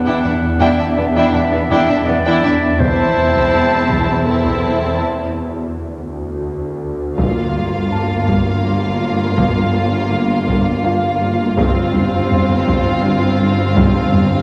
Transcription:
Already playing: synth drone E2, felt piano G4 E5, clarinet F#5
0.05 cello section E2, viola section D4, violin section E4 G5
0.23 double bass section E1, cello section E2, viola section D4, violin section D4 E5
0.60 double bass section E1, cello section E2, viola section D4, violin section E4 G5, felt piano D5, clarinet E5
0.78 cello section E2, viola section D4, violin section D4 E5
0.97 double bass section E1, cello section E2 E3, violin section B3 D5, viola section D4
1.15 cello section E2, viola section D4, violin section E4 G5
1.33 double bass section E1, cello section E2, viola section D4, violin section D4 E5, felt piano F#5
1.52 cello section E2, violin section B3 D5, viola section D4
1.70 double bass section E1, cello section E2, viola section D4, violin section E4 G5
1.89 cello section E2, viola section D4, violin section D4 E5
2.06 double bass section E1, cello section E2, violin section B3 D5, viola section D4, clarinet D5
2.25 cello section E2, viola section D4, violin section E4 G5
2.43 double bass section E1, cello section E2, viola section D4, violin section D4 E5
2.79 double bass section E1, synth drone E2, cello section E2, viola section C4, violin section E4 A5, clarinet C5, taiko
3.16 cello section E3
3.35 taiko
3.53 cello section E2
3.89 cello section E2, taiko
4.25 cello section E2, viola section C4, violin section E4 A5, clarinet A4
4.44 taiko
4.63 cello section E2
4.98 synth drone D2
7.18 double bass section G1, synth drone G1, cello section G2, viola section A#3, violin section F4 F5, taiko
7.55 cello section G3
7.92 cello section G2, felt piano A5
8.28 cello section G2, taiko
8.65 cello section G3
9.02 cello section G2
9.38 cello section G2, taiko
9.76 cello section G3
10.12 cello section G2
10.48 cello section G2, taiko
10.84 cello section G3, felt piano F4 F5
11.21 cello section G2
11.57 synth drone G1, double bass section G1, cello section G2, viola section C4, violin section F4 F5, taiko
11.94 cello section G3, taiko low
12.31 cello section G2, taiko low
12.49 taiko low
12.67 cello section G2, taiko
13.04 cello section G3
13.41 cello section G2
13.77 cello section G2, taiko
14.14 cello section G3, taiko low

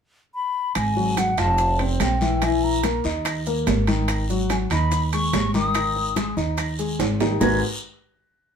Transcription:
0.35 flute B5
0.75 upright bass G#1, flute G#5, high bongo, high conga, high timbale, long guiro, claves, maracas
0.96 grand piano F#3 F#4, high bongo, high conga
1.17 flute F#5, high bongo, high conga, high timbale, low timbale, short guiro, maracas
1.38 upright bass F1, grand piano F4 F5, flute A5, high bongo, high conga, high timbale, short guiro, claves, maracas
1.58 high bongo, high conga, long guiro, maracas
1.79 grand piano C4 C5, high conga, high timbale
2.00 upright bass A#1, flute G5, high bongo, low bongo, high conga, high timbale, low timbale, short guiro, claves, maracas
2.21 grand piano E3 E4, high bongo, high conga, short guiro, maracas
2.42 grand piano E3 E4, flute G#5, high bongo, high conga, high timbale, long guiro, claves, maracas
2.63 flute A#5, high bongo, high conga
2.83 grand piano A#3 A#4, high bongo, high conga, high timbale, low timbale, short guiro, maracas
3.04 upright bass D#2, grand piano D#4 D#5, high bongo, high conga, short guiro, maracas
3.25 high bongo, high conga, high timbale, long guiro, claves, maracas
3.46 grand piano A#3 A#4, high conga, maracas
3.67 upright bass G#1, high bongo, low bongo, high conga, high timbale, low timbale, short guiro, maracas
3.87 grand piano D#3 D#4, high bongo, high conga, high timbale, short guiro, maracas
4.08 high bongo, high timbale, long guiro, claves, maracas
4.29 grand piano F#3 F#4, high bongo, high conga, maracas
4.50 flute G#5, high bongo, high conga, high timbale, low timbale, short guiro, maracas
4.70 upright bass D#2, grand piano D#4 D#5, flute B5, high bongo, high conga, high timbale, short guiro, claves, maracas
4.91 high bongo, high conga, long guiro, maracas
5.13 grand piano G#3 G#4, flute C#6, high conga, high timbale, maracas
5.33 upright bass G#1, high bongo, low bongo, high conga, high timbale, low timbale, short guiro, claves, maracas
5.54 grand piano D#3 D#4, flute D#6, high bongo, high conga, short guiro, maracas
5.75 grand piano D#3 D#4, high bongo, high timbale, long guiro, claves, maracas
5.96 high bongo, high conga
6.16 grand piano G#3 G#4, high bongo, high conga, high timbale, low timbale, short guiro, maracas
6.37 upright bass D#2, grand piano D#4 D#5, high bongo, high conga, short guiro, maracas
6.58 high bongo, high conga, high timbale, long guiro, claves, maracas
6.79 grand piano G#3 G#4, high conga, maracas
6.99 upright bass G#1, high bongo, low bongo, high conga, high timbale, short guiro, maracas
7.20 grand piano D#3 D#4, high bongo, high conga, low timbale, short guiro, maracas
7.40 upright bass G#1, grand piano G#3 D#4 F#4 G#4 A#4 B4, flute G#6, low bongo, low conga, low timbale, long guiro, claves, maracas

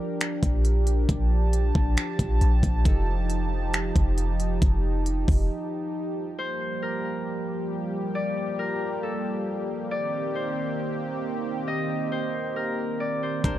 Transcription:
Already playing: analog synth pad F3 D4 G4 A#4, nylon-string guitar G3 D4 A#4
0.21 finger snap, closed hi-hat
0.43 808-style bass A#1, kick, closed hi-hat
0.65 closed hi-hat
0.87 closed hi-hat
1.09 808-style bass A#1, analog synth pad A5, kick, closed hi-hat
1.53 closed hi-hat
1.75 808-style bass A#1, kick
1.97 finger snap, closed hi-hat
2.19 808-style bass A#1, kick, closed hi-hat
2.41 808-style bass A#1, closed hi-hat
2.63 808-style bass A#1, kick, closed hi-hat
2.85 808-style bass F1, nylon-string guitar D#4 A4, analog synth pad D#4, kick, closed hi-hat
3.30 closed hi-hat
3.74 finger snap, closed hi-hat
3.96 808-style bass F1, kick, closed hi-hat
4.18 closed hi-hat
4.40 closed hi-hat
4.62 808-style bass F1, kick, closed hi-hat
5.06 closed hi-hat
5.28 808-style bass F1, kick, open hi-hat
6.38 analog synth pad F3 G3 A#3 G4, harp C5
6.82 harp A#4
8.15 harp D5
8.59 harp A#4
9.03 harp A4
9.91 analog synth pad D#3 C4 G4, harp D5
10.35 harp C5
11.68 harp D#5
12.12 harp C5
12.56 harp A#4
13.00 harp D5
13.23 harp C5
13.44 808-style bass A#1, analog synth pad F3 D4 G4, nylon-string guitar G3 D4 A#4, synth pluck D4, harp C5, kick, closed hi-hat

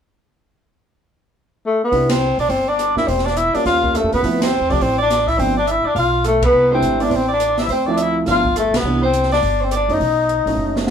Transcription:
1.66 tenor saxophone A3
1.84 tenor saxophone B3
1.91 upright bass C2, upright piano G3 B3 D4 E4, kick, open hi-hat
2.09 tenor saxophone C4, alto saxophone C5, snare, ride
2.38 upright bass B1, tenor saxophone D4, alto saxophone D5, open hi-hat
2.49 upright bass G1, tenor saxophone C4, alto saxophone C5, kick, open hi-hat
2.68 tenor saxophone D4, alto saxophone D5
2.79 cross-stick, closed hi-hat
2.95 upright bass D#2, upright piano G3 A#3 D4 G4, tenor saxophone E4, alto saxophone E5, snare
3.07 upright bass E1, tenor saxophone C4, alto saxophone C5, kick, open hi-hat
3.18 snare
3.25 tenor saxophone D4, alto saxophone D5, snare
3.37 tenor saxophone E4, alto saxophone E5, closed hi-hat
3.54 upright piano G3 A#3 C#4 F4, tenor saxophone D4, alto saxophone D5, muted upright bass stroke, open hi-hat
3.65 upright bass D#2, tenor saxophone F4, alto saxophone F5, kick, snare, open hi-hat
3.82 upright piano G3 A#3 C#4 F4, kick
3.95 tenor saxophone A3, alto saxophone A4, cross-stick, closed hi-hat
4.03 upright bass F2
4.13 upright bass D#2, tenor saxophone B3, alto saxophone B4, open hi-hat
4.23 upright bass D2, upright piano F3 A3 C4 E4, kick, open hi-hat
4.42 tenor saxophone C4, alto saxophone C5, snare, ride
4.61 upright bass E2
4.69 upright bass C2, upright piano F3 A3 C4 G4, alto saxophone D5, kick, open hi-hat
4.73 tenor saxophone D4
4.81 upright bass A1, tenor saxophone C4, alto saxophone C5, kick, open hi-hat
4.98 tenor saxophone D4, alto saxophone D5
5.10 cross-stick, snare, closed hi-hat
5.27 tenor saxophone E4, alto saxophone E5, kick, open hi-hat
5.37 upright bass G1, upright piano F3 A3 B3 D4, tenor saxophone C4, alto saxophone C5, kick, open hi-hat
5.57 tenor saxophone D4, alto saxophone D5
5.67 tenor saxophone E4, alto saxophone E5, closed hi-hat
5.84 tenor saxophone D4, alto saxophone D5, muted upright bass stroke
5.95 upright bass B1, tenor saxophone F4, alto saxophone F5, kick, open hi-hat
6.24 tenor saxophone A3, alto saxophone A4, cross-stick, closed hi-hat
6.42 tenor saxophone B3, alto saxophone B4, kick, ride
6.53 upright bass C2
6.71 upright piano G3 A3 D4 E4, tenor saxophone C4, alto saxophone C5
6.81 upright bass G#1, closed hi-hat
7.00 upright piano G3 B3 C4 E4, tenor saxophone D4, alto saxophone D5, open hi-hat
7.10 upright bass A1, alto saxophone C5, kick, open hi-hat
7.16 tenor saxophone C4
7.28 alto saxophone D5
7.33 tenor saxophone D4
7.40 cross-stick, closed hi-hat
7.58 alto saxophone E5, snare, open hi-hat
7.63 tenor saxophone E4
7.68 upright bass D2, alto saxophone C5, kick, open hi-hat
7.72 tenor saxophone C4
7.86 upright piano F3 A3 C4 E4, alto saxophone D5
7.92 tenor saxophone D4
7.97 alto saxophone E5, closed hi-hat
8.02 tenor saxophone E4
8.26 upright bass G1, upright piano F3 A3 B3 D4, alto saxophone F5, kick, snare, open hi-hat
8.31 tenor saxophone F4
8.44 kick
8.56 tenor saxophone A3, alto saxophone A4, cross-stick, closed hi-hat
8.72 upright bass B1, alto saxophone B4, snare, ride
8.77 tenor saxophone B3
8.83 upright bass C2, upright piano E3 G3 B3 D4
9.03 tenor saxophone C4, alto saxophone C5
9.13 closed hi-hat
9.23 snare
9.31 tenor saxophone D4, alto saxophone D5, snare, open hi-hat
9.42 upright bass G1, kick, open hi-hat
9.61 tenor saxophone C4, alto saxophone C5
9.71 alto saxophone D5, cross-stick, closed hi-hat
9.76 tenor saxophone D4
9.88 upright bass F#2, upright piano F#3 A3 C#4 D#4, alto saxophone D#5, open hi-hat
9.94 tenor saxophone D#4
10.00 upright bass B1, kick, open hi-hat
10.29 closed hi-hat
10.46 upright bass A1, upright piano F#3 A3 C#4 D#4, open hi-hat
10.57 upright bass F#1
10.75 upright piano F#3 A3 C#4 D#4, snare
10.87 snare

